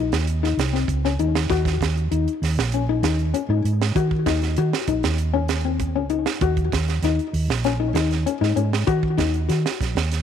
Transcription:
0.00 0.10 A#1 medium
0.00 0.13 D#4 medium
0.12 0.57 D#2 medium
0.12 snare medium
0.12 closed hi-hat soft
0.27 closed hi-hat medium
0.43 0.59 D#4 medium
0.43 snare soft
0.57 0.85 C2 medium
0.57 snare medium
0.57 closed hi-hat medium
0.73 0.89 C4 medium
0.73 snare soft
0.88 1.16 C#2 medium
0.88 kick medium
0.88 closed hi-hat medium
1.05 1.13 C#4 medium
1.05 snare soft
1.19 1.47 D#2 medium
1.19 1.35 D#4 medium
1.19 closed hi-hat medium
1.35 snare medium
1.49 1.78 D#2 loud
1.49 1.66 F#4 loud
1.49 kick medium
1.49 snare soft
1.49 closed hi-hat medium
1.65 kick medium
1.65 snare soft
1.65 closed hi-hat soft
1.81 2.09 D#2 medium
1.81 kick medium
1.81 snare medium
1.81 closed hi-hat medium
1.97 closed hi-hat soft
2.11 2.26 D#2 medium
2.11 2.27 D#4 medium
2.11 closed hi-hat medium
2.28 closed hi-hat soft
2.42 2.56 D#2 medium
2.42 snare soft
2.42 open hi-hat medium
2.58 3.01 A#1 medium
2.58 snare medium
2.72 2.82 C#4 soft
2.72 closed hi-hat medium
2.89 2.97 D#4 medium
3.03 3.32 D#2 loud
3.03 3.19 D#4 medium
3.03 snare medium
3.03 closed hi-hat medium
3.19 closed hi-hat soft
3.34 3.42 C#4 medium
3.34 closed hi-hat medium
3.49 3.63 G#2 medium
3.49 3.58 D#4 medium
3.64 3.93 G#2 medium
3.64 closed hi-hat medium
3.82 snare medium
3.95 4.24 D#3 loud
3.95 4.12 F#4 loud
3.95 kick medium
3.95 closed hi-hat medium
4.11 kick medium
4.26 4.55 D#2 medium
4.26 4.42 D#4 medium
4.26 kick medium
4.26 snare medium
4.26 closed hi-hat medium
4.42 snare soft
4.42 closed hi-hat soft
4.57 4.72 D#3 medium
4.57 4.74 F#4 medium
4.57 closed hi-hat medium
4.73 snare medium
4.88 5.02 A#1 medium
4.88 5.04 D#4 medium
4.88 kick medium
4.88 closed hi-hat medium
5.03 5.96 D#2 medium
5.03 snare medium
5.03 closed hi-hat soft
5.18 closed hi-hat medium
5.33 5.50 C#4 medium
5.48 snare medium
5.48 closed hi-hat medium
5.65 5.81 C4 medium
5.80 kick medium
5.80 closed hi-hat medium
5.95 6.25 C#2 medium
5.95 6.04 C#4 medium
6.10 6.26 D#4 medium
6.10 closed hi-hat soft
6.26 snare medium
6.41 6.70 D#2 loud
6.41 6.58 F#4 loud
6.41 kick medium
6.41 closed hi-hat medium
6.57 kick medium
6.57 closed hi-hat soft
6.72 7.01 D#2 medium
6.72 kick medium
6.72 snare medium
6.72 closed hi-hat medium
6.88 snare soft
6.88 closed hi-hat soft
7.02 7.17 D#2 medium
7.02 7.20 D#4 medium
7.02 snare soft
7.02 closed hi-hat medium
7.19 closed hi-hat soft
7.33 7.48 D#2 medium
7.33 open hi-hat medium
7.48 7.92 A#1 medium
7.48 snare medium
7.64 7.73 C#4 medium
7.64 snare soft
7.64 closed hi-hat medium
7.80 7.88 D#4 medium
7.94 8.24 D#2 loud
7.94 8.11 D#4 medium
7.94 snare medium
7.94 closed hi-hat medium
8.11 snare soft
8.11 closed hi-hat soft
8.26 8.35 C#4 medium
8.26 closed hi-hat medium
8.41 8.55 G#2 loud
8.41 8.50 D#4 medium
8.41 snare soft
8.56 8.86 G#2 medium
8.56 8.73 C#4 medium
8.56 closed hi-hat medium
8.73 snare medium
8.87 9.17 D#3 loud
8.87 9.04 F#4 loud
8.87 kick loud
8.87 closed hi-hat medium
9.03 kick medium
9.17 9.48 D#2 medium
9.17 9.34 D#4 medium
9.17 kick medium
9.17 snare medium
9.17 closed hi-hat medium
9.34 closed hi-hat soft
9.49 9.64 D#3 medium
9.49 9.65 F#4 medium
9.49 snare soft
9.49 closed hi-hat medium
9.66 snare medium
9.81 9.95 A#1 medium
9.81 kick medium
9.81 snare soft
9.81 closed hi-hat medium
9.95 10.22 D#2 medium
9.95 snare medium
9.95 closed hi-hat soft
10.12 snare soft
10.12 closed hi-hat medium

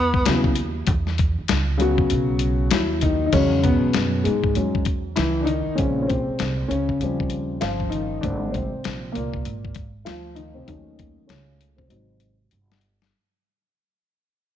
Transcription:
0.00 0.24 E2 loud
0.00 0.56 B3 loud
0.14 kick medium
0.25 0.85 D#2 medium
0.25 0.50 C#3 medium
0.25 0.50 F#3 medium
0.25 0.51 B3 medium
0.25 0.51 E4 medium
0.25 snare loud
0.25 closed hi-hat loud
0.44 kick medium
0.55 closed hi-hat medium
0.87 1.35 E2 loud
0.87 kick loud
0.87 closed hi-hat medium
1.07 snare soft
1.18 kick medium
1.18 closed hi-hat medium
1.39 muted upright bass stroke soft
1.48 2.08 C#2 medium
1.48 snare loud
1.48 closed hi-hat medium
1.78 2.66 C#3 loud
1.78 2.66 F#3 medium
1.78 2.67 B3 medium
1.78 2.68 F#4 loud
1.78 closed hi-hat medium
1.98 kick medium
2.10 2.69 B1 medium
2.10 closed hi-hat medium
2.39 closed hi-hat medium
2.71 3.30 D#2 medium
2.71 3.00 F#3 medium
2.71 3.00 E4 medium
2.71 snare loud
2.71 closed hi-hat loud
3.01 3.26 D#3 medium
3.01 3.25 D#4 medium
3.01 kick medium
3.01 closed hi-hat medium
3.26 3.32 D#4 medium
3.33 3.80 E2 loud
3.33 3.62 C#3 medium
3.33 4.21 F#3 medium
3.33 4.21 G#3 soft
3.33 4.22 C#4 medium
3.33 kick loud
3.33 closed hi-hat medium
3.33 crash medium
3.63 4.22 B2 medium
3.63 4.26 B3 medium
3.63 kick medium
3.63 closed hi-hat medium
3.84 muted upright bass stroke soft
3.93 4.24 F#2 medium
3.93 snare loud
3.93 closed hi-hat medium
4.24 4.54 G#2 medium
4.24 4.82 G#2 medium
4.24 4.54 G#3 medium
4.24 closed hi-hat medium
4.44 kick medium
4.55 5.14 E2 medium
4.55 4.83 F#3 soft
4.55 4.83 G#3 soft
4.55 4.83 C#4 soft
4.55 closed hi-hat medium
4.75 kick medium
4.85 kick medium
4.85 closed hi-hat medium
5.16 5.64 C#2 medium
5.16 5.41 E3 medium
5.16 5.42 E4 loud
5.16 snare loud
5.16 closed hi-hat medium
5.41 5.47 D4 medium
5.45 5.76 D#3 medium
5.45 5.74 D#4 medium
5.45 closed hi-hat medium
5.68 muted upright bass stroke soft
5.75 6.25 A#1 loud
5.75 6.65 A#2 soft
5.75 6.02 C#3 medium
5.75 6.66 G#3 soft
5.75 6.05 C4 medium
5.75 6.00 C#4 medium
5.75 kick loud
5.75 closed hi-hat medium
6.02 6.08 C#4 medium
6.07 6.67 C3 medium
6.07 6.71 C4 medium
6.07 kick medium
6.07 closed hi-hat medium
6.28 muted upright bass stroke soft
6.39 6.69 C2 loud
6.39 snare loud
6.39 closed hi-hat medium
6.68 6.99 C#2 medium
6.68 7.00 C#3 medium
6.68 7.26 C#4 medium
6.68 closed hi-hat medium
6.89 kick medium
7.01 7.59 D#2 medium
7.01 8.19 C#3 medium
7.01 7.61 F3 soft
7.01 8.20 G3 medium
7.01 8.20 C4 medium
7.01 closed hi-hat medium
7.20 kick medium
7.30 closed hi-hat medium
7.61 8.20 G1 medium
7.61 7.91 F3 medium
7.61 7.93 F4 medium
7.61 snare loud
7.61 closed hi-hat medium
7.80 kick medium
7.90 8.21 D#3 medium
7.90 8.22 D#4 medium
7.90 closed hi-hat medium
8.21 8.70 G#1 loud
8.21 8.52 D3 medium
8.21 8.66 G3 soft
8.21 8.67 A#3 soft
8.21 8.49 C4 medium
8.21 8.53 D4 medium
8.21 kick loud
8.21 closed hi-hat medium
8.51 9.09 C4 medium
8.51 closed hi-hat medium
8.55 9.11 C3 medium
8.55 kick medium
8.74 muted upright bass stroke soft
8.84 9.14 A#1 medium
8.84 snare loud
8.84 closed hi-hat medium
9.12 9.44 C2 medium
9.12 9.72 A#2 medium
9.12 9.70 A#3 medium
9.12 closed hi-hat medium
9.34 kick medium
9.45 10.04 G#1 medium
9.45 closed hi-hat medium
9.65 kick medium
9.75 kick medium
9.75 closed hi-hat medium
10.05 10.65 D2 medium
10.05 10.36 F3 medium
10.05 10.37 F4 medium
10.05 snare loud
10.05 closed hi-hat medium
10.35 10.55 D#3 medium
10.35 10.55 D#4 medium
10.35 closed hi-hat medium
10.54 10.67 C3 medium
10.54 10.67 C4 medium
10.66 11.15 D#2 loud
10.66 11.25 D#3 medium
10.66 11.86 F#3 soft
10.66 11.86 A3 soft
10.66 11.26 C#4 medium
10.66 11.30 D#4 medium
10.66 kick medium
10.66 closed hi-hat medium
10.99 kick medium
10.99 closed hi-hat medium
11.18 muted upright bass stroke soft
11.27 11.87 C#2 medium
11.27 11.75 C#3 medium
11.27 11.74 C#4 medium
11.27 snare loud
11.27 closed hi-hat medium
11.61 closed hi-hat medium
11.77 12.78 C3 medium
11.77 11.88 C4 medium
11.77 kick medium
11.89 12.48 G#1 medium
11.89 12.33 F#3 medium
11.89 12.33 C4 medium
11.89 12.33 D#4 medium
11.89 closed hi-hat medium
12.20 closed hi-hat medium
12.51 13.10 G1 medium
12.51 closed hi-hat medium
12.72 snare medium
12.81 closed hi-hat medium
13.02 snare medium

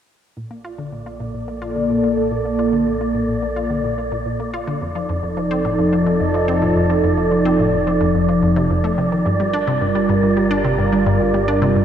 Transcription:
0.37 4.79 A#1 medium
0.37 0.50 A#2 medium
0.37 4.77 A#3 medium
0.37 4.77 A4 medium
0.37 11.85 D5 medium
0.37 4.77 D5 medium
0.51 0.60 A#3 medium
0.65 0.78 F4 medium
0.78 0.84 D3 medium
0.92 1.02 A#2 medium
1.06 1.12 A#3 medium
1.20 1.26 A#2 medium
1.34 1.47 A#2 medium
1.48 1.57 A#3 medium
1.62 1.75 F4 medium
1.76 1.81 D3 medium
1.90 1.99 A#2 medium
2.03 2.09 A#3 medium
2.17 2.23 A#2 medium
2.31 2.44 A#2 medium
2.45 2.55 A#3 medium
2.59 2.72 F4 medium
2.73 2.79 D3 medium
2.87 2.96 A#2 medium
3.01 3.06 A#3 medium
3.15 3.20 A#2 medium
3.29 3.42 A#2 medium
3.42 3.52 A#3 medium
3.56 3.69 F4 medium
3.70 3.76 D3 medium
3.84 3.94 A#2 medium
3.98 4.04 A#3 medium
4.12 4.18 A#2 medium
4.26 4.39 A#2 medium
4.40 4.49 A#3 medium
4.54 4.67 F4 medium
4.67 4.73 D3 medium
4.81 9.23 F1 medium
4.81 4.91 F2 medium
4.81 9.22 F3 medium
4.81 9.22 D#4 medium
4.81 9.22 A4 medium
4.95 5.01 F3 medium
5.09 5.15 F2 medium
5.23 5.36 F2 medium
5.37 5.46 F3 medium
5.51 5.64 C4 loud
5.65 5.70 A2 medium
5.79 5.88 F2 medium
5.93 5.98 F3 medium
6.06 6.12 F2 medium
6.20 6.33 F2 medium
6.34 6.44 F3 medium
6.48 6.61 C4 medium
6.62 6.68 A2 loud
6.76 6.85 F2 medium
6.90 6.95 F3 medium
7.04 7.09 F2 medium
7.17 7.31 F2 medium
7.31 7.41 F3 medium
7.45 7.58 C4 medium
7.59 7.65 A2 medium
7.73 7.83 F2 medium
7.87 7.93 F3 medium
8.01 8.06 F2 loud
8.15 8.28 F2 medium
8.29 8.38 F3 medium
8.42 8.56 F2 medium
8.56 8.66 C3 medium
8.70 8.80 F2 medium
8.84 8.97 A3 medium
8.98 9.04 C3 medium
9.12 9.21 D#3 medium
9.26 11.85 G1 medium
9.26 9.39 G2 medium
9.26 11.85 G3 medium
9.26 11.85 F4 medium
9.26 11.85 A#4 medium
9.40 9.49 G3 medium
9.53 9.67 D4 medium
9.67 9.73 C3 medium
9.81 9.91 G2 medium
9.95 10.01 G3 medium
10.09 10.15 G2 medium
10.23 10.36 G2 medium
10.37 10.46 G3 medium
10.51 10.64 D4 medium
10.65 10.70 C3 medium
10.78 10.88 G2 medium
10.92 10.98 G3 medium
11.06 11.12 G2 medium
11.20 11.33 G2 medium
11.34 11.44 G3 medium
11.48 11.61 D4 medium
11.62 11.68 C3 medium
11.76 11.85 G2 medium

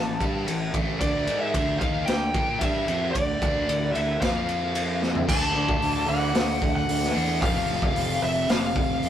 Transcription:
0.00 0.19 A1 medium
0.00 0.15 A2 medium
0.00 0.15 E3 medium
0.00 0.72 A5 medium
0.20 0.45 G2 medium
0.20 0.46 G3 medium
0.20 0.47 D4 medium
0.20 0.47 G4 loud
0.20 kick medium
0.20 ride medium
0.47 0.72 A1 medium
0.47 0.68 A2 medium
0.47 0.69 E3 medium
0.47 ride medium
0.74 0.99 A1 medium
0.74 1.00 A2 medium
0.74 1.00 E3 medium
0.74 1.00 A3 medium
0.74 kick medium
0.74 ride medium
1.00 1.26 D2 medium
1.00 1.26 D3 medium
1.00 1.27 A3 medium
1.00 1.27 D4 medium
1.00 1.40 D5 medium
1.00 kick loud
1.00 ride medium
1.27 1.52 G#2 medium
1.27 1.53 G#3 medium
1.27 1.53 D#4 medium
1.27 1.54 G#4 loud
1.27 ride medium
1.40 1.78 E5 medium
1.54 1.79 D2 medium
1.54 1.80 D3 medium
1.54 1.80 A3 medium
1.54 1.80 D4 medium
1.54 kick loud
1.54 ride medium
1.79 2.06 D#2 medium
1.79 2.07 D#3 medium
1.79 2.07 A#3 loud
1.79 2.07 D#4 loud
1.79 2.05 F5 medium
1.79 kick medium
1.79 ride medium
2.06 2.33 D2 medium
2.06 2.29 D3 medium
2.06 2.29 A3 medium
2.06 2.62 G5 loud
2.06 snare loud
2.06 ride medium
2.34 2.59 A#2 medium
2.34 2.60 A#3 medium
2.34 2.60 F4 medium
2.34 2.61 A#4 medium
2.34 kick medium
2.34 ride medium
2.59 2.86 G2 medium
2.59 2.87 G3 medium
2.59 2.87 D4 medium
2.59 2.88 G4 medium
2.59 3.11 E5 medium
2.59 kick loud
2.59 ride medium
2.88 3.12 F2 medium
2.88 3.14 F3 medium
2.88 3.14 C4 medium
2.88 3.14 F4 medium
2.88 ride medium
3.11 3.40 D2 medium
3.11 3.36 D3 medium
3.11 3.36 A3 medium
3.11 3.92 D5 medium
3.11 kick medium
3.11 ride medium
3.41 3.66 D2 medium
3.41 3.67 D3 loud
3.41 3.68 A3 medium
3.41 3.68 D4 medium
3.41 kick loud
3.41 ride medium
3.68 3.93 D2 medium
3.68 3.90 D3 medium
3.68 3.90 A3 medium
3.68 ride medium
3.92 4.20 D2 medium
3.92 4.16 D3 medium
3.92 4.16 A3 medium
3.92 4.21 E5 medium
3.92 ride medium
4.21 5.24 F2 medium
4.21 5.27 F3 loud
4.21 5.28 C4 medium
4.21 5.28 F4 medium
4.21 4.97 F5 medium
4.21 kick medium
4.21 snare loud
4.21 ride medium
4.49 ride medium
4.75 ride medium
5.03 snare medium
5.15 floor tom medium
5.28 5.51 D2 loud
5.28 7.14 D3 medium
5.28 7.16 A3 loud
5.28 7.13 D4 medium
5.28 6.08 A5 loud
5.28 kick loud
5.28 crash loud
5.55 5.78 D2 medium
5.69 kick medium
5.81 6.04 D2 medium
5.81 open hi-hat medium
6.09 6.32 D2 medium
6.09 6.74 F#5 loud
6.35 6.59 D2 medium
6.35 snare loud
6.35 open hi-hat medium
6.62 6.85 D2 medium
6.62 kick medium
6.76 7.38 F#5 loud
6.89 7.12 D2 medium
6.89 open hi-hat medium
7.03 snare soft
7.14 7.39 E2 medium
7.14 7.42 D3 medium
7.14 7.44 A3 medium
7.14 7.40 D4 medium
7.41 7.65 F1 loud
7.41 9.09 F2 medium
7.41 9.09 C3 loud
7.41 9.09 F3 loud
7.41 8.23 F5 medium
7.41 kick loud
7.41 open hi-hat medium
7.70 7.93 F1 medium
7.82 kick medium
7.96 8.19 F1 medium
7.96 open hi-hat medium
8.23 8.46 F1 medium
8.23 8.50 E5 medium
8.49 8.72 F1 medium
8.49 9.09 F5 medium
8.49 snare loud
8.49 open hi-hat medium
8.76 8.99 F1 medium
8.76 kick medium
9.03 9.09 F1 loud
9.03 open hi-hat medium

